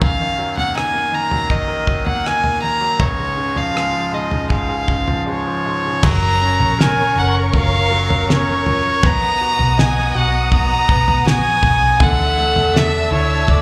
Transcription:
0.02 F#2 F5, kick, floor tom
0.20 D#3
0.38 F#3
0.57 A#3 F#5, floor tom
0.75 D#4 G#5, cross-stick
0.94 A#3
1.12 D#3 A#5
1.31 F#3, floor tom
1.50 D#3 D#5, kick
1.68 A#4
1.87 F#3, kick
2.06 A#3 F#5, floor tom
2.25 D#4 G#5, cross-stick
2.43 A#3, floor tom
2.63 D#3 A#5
2.81 F#3
2.99 C#2 C#5, kick, floor tom
3.18 G#2
3.37 C#3
3.55 F3 F5, floor tom
3.75 G#3, cross-stick
3.93 F3
4.12 G#2 D#5
4.31 C#3, floor tom
4.49 G#2 F5, kick
4.69 G#4
4.87 C#3, kick
5.07 F3, floor tom
5.27 G#3 C#5
5.46 F3
5.65 G#2
5.84 C#3
6.01 F#1 F#2 C#3 F#3 C#4 A#4 C#5 A#5 C#6, kick, floor tom, crash
6.06 A#4 A#5
6.41 C#4
6.59 A#1, floor tom
6.79 A#4 G#5, snare
7.16 F#1 C#4 F#5
7.52 F#1 F#3 C#4 F4 A#4, kick, floor tom
7.56 F5
7.91 F#3
8.10 floor tom
8.29 C#4 C#5, snare
8.64 F#3 C#4 F4 A#4, floor tom
9.01 B1 B2 F#3 B3 F#5 A#5 D#6, kick, floor tom
9.05 D#4 A#4 A#5
9.41 F#4
9.59 B1, floor tom
9.78 D#5 G#5, snare
10.14 B1 F#4 F#5
10.51 F#3 B3 D#4 A#4 A#5, kick, floor tom
10.89 B1 B3, kick
11.08 floor tom
11.26 A#1 F#4 G#5, snare
11.62 B1 B3 D#4 A#4, kick, floor tom
11.99 D2 D3 E3 A3 D4 E5 F#5 A5 E6, kick, floor tom
12.05 A4
12.38 A3
12.56 E2, floor tom
12.74 D4 E5, snare
13.11 D2 E4 C#5
13.48 D2 E3 A3 D4 A4 D5, kick, floor tom

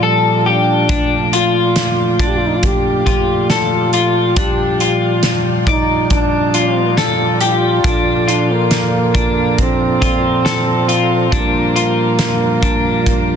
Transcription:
Already playing: A#2 F3 G3 F4 D5
0.03 A4
0.46 D4 G4
0.89 A3 D4, kick, closed hi-hat
1.33 F4, closed hi-hat
1.76 snare, closed hi-hat
2.19 D4, kick, closed hi-hat
2.27 G4
2.37 F4
2.47 D#4
2.56 F4
2.63 G4, kick, closed hi-hat
3.06 F4, kick, closed hi-hat
3.50 F4 A4, snare, closed hi-hat
3.93 F4, closed hi-hat
4.36 G3 D4 G4, kick, closed hi-hat
4.80 F4, closed hi-hat
5.23 snare, closed hi-hat
5.67 D#4 D5, kick, closed hi-hat
6.10 D4, kick, closed hi-hat
6.54 F4, closed hi-hat
6.97 A4, snare, closed hi-hat
7.41 F4 G4, closed hi-hat
7.84 A#2 F3 D4 F4 A4, kick, closed hi-hat
8.28 D4 F4, closed hi-hat
8.52 A#3
8.71 snare, closed hi-hat
9.14 D4, kick, closed hi-hat
9.58 C4, kick, closed hi-hat
10.02 F4, kick, closed hi-hat
10.45 A4, snare, closed hi-hat
10.88 F4, closed hi-hat
11.32 F3 G3 A#3 D4 F4, kick, closed hi-hat
11.76 F4, closed hi-hat
12.19 snare, closed hi-hat
12.63 D4, kick, closed hi-hat
13.06 kick, closed hi-hat

